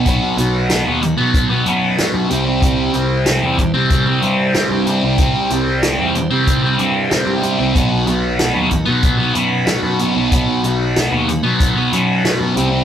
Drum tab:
HH |xxxxxxxx|xxxxxxxx|xxxxxxxx|xxxxxxxx|
SD |--o---o-|--o---o-|--o---o-|--o---o-|
BD |o---o---|o--oo---|o---o---|o--oo---|

HH |xxxxxxxx|
SD |--o---o-|
BD |o---o---|